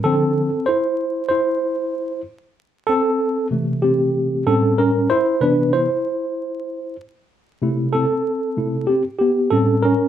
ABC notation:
X:1
M:4/4
L:1/8
Q:"Swing 16ths" 1/4=95
K:C
V:1 name="Tine electric piano"
A2 [Ec]2 [Ec]3 z | z [CA]2 z [CG]2 [CA] [^C_B] | [Ec] [DB] [Ec]4 z2 | z [CA]3 [CG] [B,G] [CA] [^C_B] |]
V:2 name="Tine electric piano" clef=bass
[D,F,C] z6 z | z3 [C,E,A,]3 [A,,G,^C]2 | z [C,E,B,] z6 | [C,A,E] z2 [C,A,E] z2 [A,,G,^C] z |]